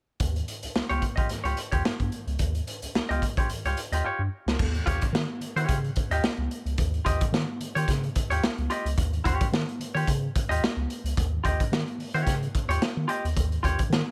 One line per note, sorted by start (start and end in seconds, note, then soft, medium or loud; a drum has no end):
0.20 0.41 D#2 loud
0.20 kick medium
0.20 closed hi-hat medium
0.36 closed hi-hat soft
0.48 closed hi-hat medium
0.63 0.68 C#2 soft
0.63 closed hi-hat medium
0.75 0.81 C#2 soft
0.75 snare loud
0.89 1.00 C#2 medium
0.89 1.04 F4 medium
0.89 1.03 G4 medium
0.89 1.03 C#5 medium
0.89 closed hi-hat soft
1.02 kick medium
1.02 closed hi-hat medium
1.16 1.27 A#1 medium
1.16 1.28 F4 medium
1.16 1.28 G4 soft
1.16 1.27 D#5 medium
1.16 kick loud
1.16 closed hi-hat soft
1.29 1.36 C#2 soft
1.29 snare soft
1.29 closed hi-hat medium
1.44 1.54 C#2 medium
1.44 1.58 F4 medium
1.44 1.58 G4 medium
1.44 1.57 C#5 medium
1.44 closed hi-hat soft
1.57 closed hi-hat medium
1.72 1.82 D#2 medium
1.72 1.83 F4 medium
1.72 1.83 G4 medium
1.72 1.82 C#5 medium
1.72 kick medium
1.72 closed hi-hat medium
1.84 1.91 G2 soft
1.84 snare loud
2.00 2.09 G2 medium
2.00 kick medium
2.00 closed hi-hat soft
2.12 closed hi-hat medium
2.27 2.36 C#2 medium
2.27 closed hi-hat medium
2.39 2.61 D#2 loud
2.39 kick medium
2.39 closed hi-hat medium
2.55 closed hi-hat soft
2.67 closed hi-hat medium
2.82 2.87 C#2 soft
2.82 closed hi-hat medium
2.94 3.01 C#2 soft
2.94 snare loud
3.09 3.19 C#2 medium
3.09 3.23 F4 medium
3.09 3.23 G4 medium
3.09 3.22 D#5 medium
3.09 closed hi-hat soft
3.22 kick medium
3.22 closed hi-hat medium
3.37 3.47 A#1 medium
3.37 3.48 F4 medium
3.37 3.48 G4 medium
3.37 3.48 C#5 medium
3.37 kick loud
3.37 closed hi-hat soft
3.49 3.56 C#2 soft
3.49 closed hi-hat medium
3.65 3.74 C#2 medium
3.65 3.79 F4 medium
3.65 3.78 G4 medium
3.65 3.78 C#5 medium
3.65 closed hi-hat soft
3.77 closed hi-hat medium
3.92 4.01 D#2 medium
3.92 4.03 F4 medium
3.92 4.03 G4 medium
3.92 4.02 D#5 medium
3.92 closed hi-hat medium
4.04 4.10 G2 soft
4.04 4.20 F4 medium
4.04 4.21 G4 medium
4.04 4.21 C#5 medium
4.19 4.29 G2 medium
4.46 4.56 C#2 medium
4.46 snare medium
4.59 4.80 D#2 loud
4.59 kick loud
4.59 crash medium
4.75 closed hi-hat soft
4.86 4.99 D#2 medium
4.86 5.02 F4 medium
4.86 5.03 G4 medium
4.86 5.04 C#5 medium
4.86 kick medium
4.86 closed hi-hat medium
5.01 kick medium
5.01 closed hi-hat medium
5.13 5.25 D#3 loud
5.13 snare loud
5.40 5.47 D#3 soft
5.40 closed hi-hat medium
5.56 5.66 D#3 loud
5.56 5.77 F4 medium
5.56 5.76 G4 medium
5.56 5.76 C#5 medium
5.56 closed hi-hat medium
5.69 5.90 C#3 loud
5.69 kick medium
5.69 closed hi-hat medium
5.84 closed hi-hat soft
5.96 kick medium
5.96 closed hi-hat medium
6.10 6.20 D#2 medium
6.10 6.25 F4 medium
6.10 6.25 G4 medium
6.10 6.24 D#5 medium
6.10 closed hi-hat medium
6.23 6.29 C#2 soft
6.23 snare loud
6.38 6.48 C#2 medium
6.51 closed hi-hat medium
6.65 6.75 C#2 medium
6.65 closed hi-hat soft
6.78 6.99 D#2 loud
6.78 kick loud
6.78 closed hi-hat medium
6.94 closed hi-hat soft
7.05 7.18 D#2 medium
7.05 7.21 F4 medium
7.05 7.22 G4 medium
7.05 7.22 D#5 medium
7.05 kick medium
7.05 closed hi-hat medium
7.21 kick loud
7.21 closed hi-hat medium
7.32 7.45 D#3 loud
7.32 snare medium
7.60 7.66 D#3 soft
7.60 closed hi-hat medium
7.75 7.85 D#3 medium
7.75 7.90 F4 medium
7.75 7.89 G4 medium
7.75 7.88 C#5 medium
7.75 closed hi-hat medium
7.88 8.09 C#3 medium
7.88 kick medium
7.88 snare soft
7.88 closed hi-hat medium
8.04 closed hi-hat soft
8.16 kick medium
8.16 closed hi-hat medium
8.30 8.40 D#2 medium
8.30 8.44 F4 medium
8.30 8.44 G4 medium
8.30 8.43 C#5 medium
8.30 closed hi-hat medium
8.43 8.49 C#2 soft
8.43 snare loud
8.58 8.67 C#2 medium
8.58 closed hi-hat soft
8.70 8.86 F4 medium
8.70 8.87 G4 medium
8.70 8.87 D#5 medium
8.70 closed hi-hat medium
8.85 8.95 C#2 medium
8.85 closed hi-hat medium
8.98 9.19 D#2 loud
8.98 kick loud
8.98 closed hi-hat medium
9.13 closed hi-hat soft
9.24 9.37 D#2 loud
9.24 9.46 F4 medium
9.24 9.46 G4 medium
9.24 9.47 C#5 medium
9.24 kick loud
9.24 closed hi-hat medium
9.41 kick loud
9.41 closed hi-hat medium
9.52 9.64 D#3 loud
9.52 snare loud
9.69 closed hi-hat soft
9.79 9.85 D#3 soft
9.79 closed hi-hat medium
9.95 10.04 D#3 medium
9.95 10.09 F4 medium
9.95 10.08 G4 medium
9.95 10.08 C#5 medium
9.95 closed hi-hat soft
10.07 10.28 C#3 loud
10.07 kick medium
10.07 closed hi-hat medium
10.35 kick medium
10.35 closed hi-hat medium
10.49 10.59 D#2 medium
10.49 10.63 F4 medium
10.49 10.63 G4 medium
10.49 10.62 D#5 medium
10.49 closed hi-hat medium
10.61 10.68 C#2 soft
10.61 snare loud
10.76 10.86 C#2 medium
10.90 closed hi-hat medium
11.04 11.14 C#2 medium
11.04 closed hi-hat medium
11.17 11.38 D#2 loud
11.17 kick loud
11.17 closed hi-hat medium
11.44 11.56 D#2 loud
11.44 11.60 F4 medium
11.44 11.60 G4 medium
11.44 11.61 D#5 medium
11.44 kick medium
11.44 closed hi-hat medium
11.60 kick loud
11.60 closed hi-hat medium
11.72 11.84 D#3 loud
11.72 snare loud
11.88 closed hi-hat soft
11.98 12.04 D#3 soft
11.98 open hi-hat medium
12.14 12.24 D#3 medium
12.14 12.35 F4 medium
12.14 12.34 G4 medium
12.14 12.34 C#5 medium
12.14 closed hi-hat soft
12.26 12.47 C#3 medium
12.26 kick medium
12.26 snare soft
12.26 closed hi-hat medium
12.43 closed hi-hat soft
12.55 kick medium
12.55 closed hi-hat medium
12.68 12.78 D#2 loud
12.68 12.83 F4 medium
12.68 12.82 G4 medium
12.68 12.82 C#5 medium
12.68 closed hi-hat medium
12.81 12.87 D#3 soft
12.81 snare loud
12.97 13.06 D#3 medium
13.08 13.24 F4 medium
13.08 13.25 G4 loud
13.08 13.25 D#5 medium
13.08 closed hi-hat medium
13.24 13.33 D#2 medium
13.24 closed hi-hat medium
13.36 13.57 D#2 loud
13.36 kick loud
13.36 closed hi-hat medium
13.52 closed hi-hat soft
13.63 13.76 D#2 loud
13.63 13.79 F4 medium
13.63 13.80 G4 medium
13.63 13.80 C#5 medium
13.63 kick medium
13.63 closed hi-hat medium
13.79 kick medium
13.79 closed hi-hat medium
13.90 14.02 D#3 loud
13.90 snare medium